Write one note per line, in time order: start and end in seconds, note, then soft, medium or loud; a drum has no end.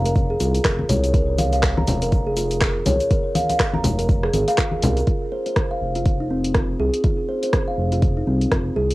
0.00 0.36 F1 loud
0.05 0.15 A#4 medium
0.05 closed hi-hat medium
0.05 shaker soft
0.15 kick loud
0.15 closed hi-hat soft
0.15 shaker soft
0.30 0.39 G#4 medium
0.40 0.59 C2 loud
0.40 0.54 F4 medium
0.40 open hi-hat medium
0.40 shaker medium
0.55 closed hi-hat medium
0.55 shaker medium
0.65 0.84 F1 medium
0.65 0.78 A#4 medium
0.65 kick loud
0.65 cross-stick loud
0.65 clap loud
0.65 closed hi-hat soft
0.65 shaker soft
0.79 high conga medium
0.89 1.83 C2 medium
0.89 1.03 C#5 loud
0.89 open hi-hat medium
0.89 low conga medium
0.89 shaker medium
1.04 closed hi-hat medium
1.04 shaker medium
1.14 1.28 A#4 medium
1.14 kick loud
1.14 closed hi-hat soft
1.14 shaker soft
1.38 1.52 F5 medium
1.38 open hi-hat medium
1.38 high conga medium
1.38 shaker medium
1.52 1.62 F5 medium
1.52 closed hi-hat medium
1.52 shaker medium
1.63 kick loud
1.63 cross-stick loud
1.63 clap loud
1.63 closed hi-hat soft
1.63 shaker soft
1.77 1.87 A#5 medium
1.77 high conga loud
1.87 2.81 F1 loud
1.87 open hi-hat medium
1.87 low conga medium
1.87 shaker medium
2.01 2.11 A#4 medium
2.01 closed hi-hat medium
2.01 shaker soft
2.12 kick loud
2.12 closed hi-hat soft
2.12 shaker soft
2.27 2.36 G#4 medium
2.37 2.51 F4 medium
2.37 open hi-hat medium
2.37 shaker medium
2.51 closed hi-hat medium
2.51 shaker soft
2.61 2.74 A#4 medium
2.61 kick loud
2.61 cross-stick loud
2.61 clap loud
2.61 closed hi-hat soft
2.61 shaker soft
2.86 2.96 C2 loud
2.86 3.00 C#5 loud
2.86 open hi-hat medium
2.86 high conga medium
2.86 low conga medium
2.86 shaker medium
3.00 closed hi-hat medium
3.00 shaker soft
3.10 3.24 A#4 medium
3.10 kick loud
3.10 closed hi-hat soft
3.10 shaker soft
3.35 3.48 F5 medium
3.35 open hi-hat medium
3.35 high conga medium
3.35 shaker medium
3.50 3.59 F5 medium
3.50 closed hi-hat medium
3.50 high conga medium
3.50 shaker medium
3.60 kick loud
3.60 cross-stick loud
3.60 clap loud
3.60 closed hi-hat soft
3.60 shaker soft
3.74 3.83 A#5 medium
3.74 high conga loud
3.84 4.29 F1 loud
3.84 open hi-hat loud
3.84 low conga loud
3.84 shaker medium
3.99 4.08 A#4 medium
3.99 closed hi-hat medium
3.99 shaker medium
4.09 kick loud
4.09 closed hi-hat soft
4.09 shaker soft
4.23 4.33 G#4 medium
4.23 cross-stick medium
4.34 4.44 G#1 loud
4.34 4.47 G#4 medium
4.34 open hi-hat medium
4.34 high conga medium
4.34 shaker medium
4.48 4.54 F5 loud
4.48 closed hi-hat medium
4.48 shaker medium
4.58 4.66 F4 medium
4.58 kick loud
4.58 cross-stick loud
4.58 clap loud
4.58 closed hi-hat soft
4.58 shaker soft
4.72 4.78 G#4 medium
4.72 high conga medium
4.83 5.02 C2 medium
4.83 4.96 A#4 medium
4.83 open hi-hat loud
4.83 low conga loud
4.83 shaker medium
4.97 5.03 A#4 medium
4.97 closed hi-hat medium
4.97 shaker soft
5.07 5.21 F4 medium
5.07 kick loud
5.07 closed hi-hat soft
5.32 5.45 C5 medium
5.46 5.56 C5 medium
5.46 closed hi-hat medium
5.56 kick loud
5.56 cross-stick loud
5.56 closed hi-hat soft
5.71 5.80 F5 medium
5.81 6.75 F1 loud
5.95 6.05 F4 medium
5.95 closed hi-hat medium
6.06 kick loud
6.06 closed hi-hat soft
6.20 6.29 D#4 medium
6.30 6.44 C4 medium
6.44 closed hi-hat medium
6.55 6.68 F4 medium
6.55 kick loud
6.55 cross-stick loud
6.55 closed hi-hat soft
6.80 6.90 C2 medium
6.80 6.93 G#4 medium
6.94 closed hi-hat medium
7.04 7.18 F4 medium
7.04 kick loud
7.04 closed hi-hat soft
7.29 7.42 C5 medium
7.43 7.52 C5 medium
7.43 closed hi-hat medium
7.53 kick loud
7.53 cross-stick loud
7.53 closed hi-hat soft
7.68 7.77 F5 medium
7.78 8.22 F1 loud
7.92 8.01 F4 medium
7.92 closed hi-hat medium
8.02 kick loud
8.02 closed hi-hat soft
8.17 8.26 D#4 medium
8.27 8.46 C2 medium
8.27 8.41 C4 medium
8.41 closed hi-hat medium
8.52 8.71 F1 medium
8.52 8.65 F4 medium
8.52 kick loud
8.52 cross-stick loud
8.52 closed hi-hat soft
8.76 8.94 C2 medium
8.76 8.90 G#4 loud
8.90 closed hi-hat medium